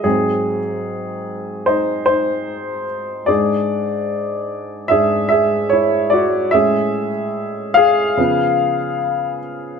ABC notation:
X:1
M:4/4
L:1/8
Q:1/4=74
K:G#phr
V:1 name="Upright piano"
[^B,G]4 [D^B] [DB]2 z | [G=d]4 [Ge] [Ge] [Ec] [Fd] | [Ge]3 [G=f]3 z2 |]
V:2 name="Upright piano" clef=bass
[G,,F,] z6 z | [G,,G,=D]4 [G,,G,D] z3 | [A,,G,C] z3 [C,^E,B,]3 z |]